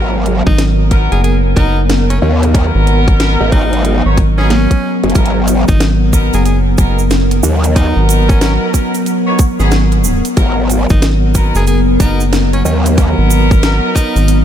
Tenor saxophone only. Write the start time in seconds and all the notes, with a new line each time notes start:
0.47 D#4
1.12 G#4
1.23 G#4
1.56 D#4
2.10 C#4
2.22 C#4
3.52 D#4
4.38 C#4
5.68 D#4
6.35 G#4
6.46 G#4
7.76 D#4
8.28 C#4
8.41 C#4
10.90 D#4
11.56 G#4
11.68 G#4
12.01 D#4
12.54 C#4
12.65 C#4
13.95 D#4